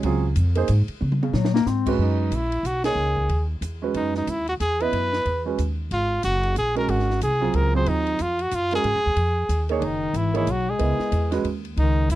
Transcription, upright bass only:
0.03 0.35 C#2 medium
0.36 0.68 F2 medium
0.69 0.88 G#2 medium
0.88 muted upright bass stroke soft
1.02 1.33 C#3 medium
1.33 1.65 A#2 loud
1.66 1.98 G#2 medium
1.99 2.30 F#2 medium
2.31 2.62 A#1 medium
2.63 2.95 B1 medium
2.95 3.28 C#2 medium
3.29 3.61 D#2 medium
3.61 3.93 E2 medium
3.94 4.26 F#2 medium
4.27 4.59 D#2 medium
4.60 4.92 E2 medium
4.93 5.24 F#2 medium
5.26 5.57 E2 medium
5.59 5.90 D#2 medium
5.91 6.22 G#1 medium
6.24 6.55 F#1 medium
6.56 6.87 A#1 medium
6.88 7.20 G#1 medium
7.22 7.53 C2 medium
7.54 7.85 C#2 medium
7.86 8.18 D#2 medium
8.20 8.51 F2 medium
8.52 8.83 F#2 medium
8.84 8.95 G#2 medium
8.95 9.05 F#2 medium
9.06 9.15 D#2 medium
9.16 9.48 F2 medium
9.49 9.81 D#2 medium
9.82 10.13 F#1 medium
10.13 10.46 G#1 medium
10.47 10.79 B1 medium
10.80 10.98 C#2 medium
10.99 muted upright bass stroke soft
11.12 11.43 E2 medium
11.44 11.76 D#2 medium
11.77 12.08 C#2 medium
12.09 12.15 E2 medium

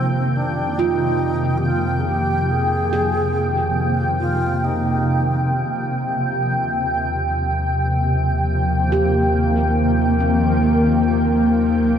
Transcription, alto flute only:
0.00 0.38 C4 medium
0.36 0.81 D4 medium
0.79 1.59 D#4 medium
1.58 1.67 G4 medium
1.65 2.01 F4 medium
1.99 2.09 G#4 medium
2.08 2.53 G4 medium
2.51 3.79 G#4 medium
4.20 4.66 F4 medium
4.64 5.50 D#4 medium

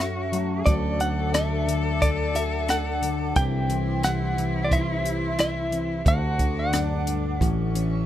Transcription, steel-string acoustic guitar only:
0.00 0.62 F#2 medium
0.00 0.31 F#3 medium
0.00 0.63 A3 medium
0.00 0.62 C#4 medium
0.00 0.63 F#4 medium
0.32 0.62 F#3 medium
0.67 3.36 D2 medium
0.67 0.99 D3 medium
0.67 1.34 F#3 medium
0.67 2.01 A3 medium
0.67 2.33 F#4 medium
1.00 1.67 D3 medium
1.35 3.36 F#3 medium
1.68 3.01 D3 medium
2.02 2.68 A3 medium
2.35 3.32 F#4 medium
2.69 3.36 A3 medium
3.02 3.36 D3 medium
3.36 3.70 C3 medium
3.36 3.69 E3 medium
3.36 4.04 C4 medium
3.36 4.70 E4 medium
3.70 4.35 E3 medium
4.36 5.70 E3 medium
4.71 5.03 E4 medium
5.04 5.37 E4 medium
5.38 6.02 E4 medium
5.71 6.01 E3 medium
6.05 6.72 D2 medium
6.39 7.40 D3 medium
6.73 7.06 F#2 medium
7.06 7.40 G2 medium
7.41 8.06 A2 medium
7.75 8.06 E3 medium

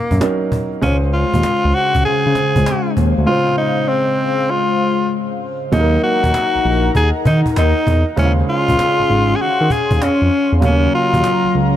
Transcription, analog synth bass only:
0.11 0.20 F#2 medium
0.83 1.25 C#2 loud
1.34 1.42 D#2 loud
1.65 1.73 C#2 medium
1.95 2.03 C#2 medium
2.06 2.14 C#3 soft
2.26 2.34 C#3 loud
2.56 2.64 C#2 medium
2.97 3.14 D#2 loud
3.18 3.26 D2 loud
5.73 5.98 D#2 loud
6.24 6.32 D#2 loud
6.55 6.59 A#1 medium
6.65 6.90 A#1 medium
6.95 7.12 D#2 loud
7.26 7.42 D#3 loud
7.57 7.74 D#2 medium
7.87 8.04 E2 loud
8.18 8.43 D#2 loud
8.69 8.77 C#2 loud
8.99 9.03 G#1 medium
9.10 9.35 G#1 loud
9.40 9.48 D#3 soft
9.61 9.69 D#3 loud
9.91 9.99 D#2 medium
10.01 10.09 F2 soft
10.22 10.30 F2 medium
10.52 10.61 E2 loud
10.62 10.88 D#2 loud
11.14 11.22 D#2 medium
11.44 11.48 C#2 medium
11.54 11.77 C#2 medium

